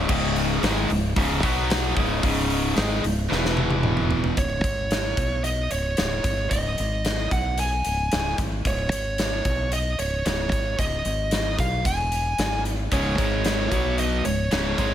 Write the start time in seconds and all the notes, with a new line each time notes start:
0.09 C#1 C#2 G#2 C#3, kick, crash
0.36 open hi-hat
0.62 G#1 G#2 D#3 G#3, snare, open hi-hat
0.90 C#1 C#2 G#2, open hi-hat
1.16 C#1 C#2 G#2 C#3, kick, open hi-hat
1.42 B1 B2 F#3 B3, kick, open hi-hat
1.70 snare, open hi-hat
1.95 C#1 C#2 G#2 C#3, kick, open hi-hat
2.22 C#1 C#2 G#2 C#3, kick, open hi-hat
2.50 open hi-hat
2.76 G#1 G#2 D#3 G#3, snare, open hi-hat
3.04 C#1 C#2 G#2, open hi-hat
3.29 E1 E2 B2 E3, snare
3.45 snare
3.57 high tom
3.70 high tom
3.83 mid tom
3.97 mid tom
4.11 floor tom
4.24 floor tom
4.37 C#1 C#5, kick, closed hi-hat
4.64 G#1, kick, closed hi-hat
4.91 snare, closed hi-hat
5.17 B1, kick, closed hi-hat
5.44 D#5, closed hi-hat
5.71 C#1 C#5, closed hi-hat
5.97 C#1 C#5, snare, closed hi-hat
6.24 G#1, kick, closed hi-hat
6.50 C#1 D#5, kick, closed hi-hat
6.78 G#1, closed hi-hat
7.05 snare, closed hi-hat
7.31 B1 F#5, kick, closed hi-hat
7.58 G#5, closed hi-hat
7.85 C#1, closed hi-hat
8.12 C#1, snare, closed hi-hat
8.38 G#1, kick, closed hi-hat
8.65 C#1 C#5, kick, closed hi-hat
8.92 G#1, closed hi-hat
9.18 snare, closed hi-hat
9.45 B1, kick, closed hi-hat
9.72 D#5, closed hi-hat
9.99 C#1 C#5, closed hi-hat
10.26 C#1 C#5, snare, closed hi-hat
10.52 G#1, kick, closed hi-hat
10.79 C#1 D#5, kick, closed hi-hat
11.05 G#1, closed hi-hat
11.31 snare, closed hi-hat
11.59 B1 F5, kick, closed hi-hat
11.85 E1 G#5, kick, closed hi-hat
12.12 closed hi-hat
12.38 G#1, snare, closed hi-hat
12.65 closed hi-hat
12.92 C#1 C#2 G#2 C#3 C#5, kick, closed hi-hat
13.18 G#1 G#2 D#3 G#3, kick, closed hi-hat
13.45 snare, closed hi-hat
13.71 B1 B2 F#3 B3, kick, closed hi-hat
13.98 D#5, closed hi-hat
14.25 C#1 C#2 G#2 C#5, closed hi-hat
14.51 C#1 C#2 G#2 C#3 C#5, snare, closed hi-hat
14.78 G#1 G#2 D#3 G#3, kick, closed hi-hat